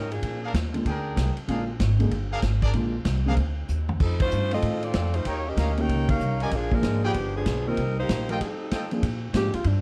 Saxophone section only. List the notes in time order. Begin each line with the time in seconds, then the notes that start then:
Already playing: G3 C#4 D#4 A#4
0.11 F3 A#3 D4 G#4
4.02 F3 C4 D#4 A4
4.22 A3 D#4 F4 C5
4.53 C4 F4 A4 D#5
4.84 C4 F4 A4 D5
5.15 A3 D#4 F4 C5
5.27 A#3 D#4 G4 C#5
5.48 C#4 G4 A#4 D#5
5.80 D#4 A#4 C#5 G5
6.10 D#4 A#4 C#5 F5
6.43 C#4 G4 A#4 D#5
6.54 F3 A#3 D4 G#4
6.73 G#3 D4 F4 A#4
7.05 F3 B3 D4 G4
7.36 F3 B3 D4 G#4
7.67 G3 C4 D#4 A#4
7.99 A#3 D#4 G4 C5
8.30 G3 C4 D#4 A#4
8.41 G3 C4 D#4 A4